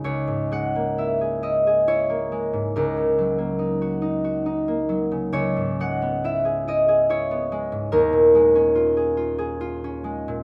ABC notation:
X:1
M:3/4
L:1/16
Q:1/4=70
K:C#dor
V:1 name="Harp"
c2 f2 e2 d2 c4 | A12 | c2 f2 e2 d2 c4 | A12 |]
V:2 name="Harp"
[C,,G,G] G,, G, A, E G E G E A, G, G,, | C,, C, F, A, D F D F D A, F, C, | C,, G,, G, B, E G E G E B, G, G,, | D,, A,, G, C ^E G E G E C G, A,, |]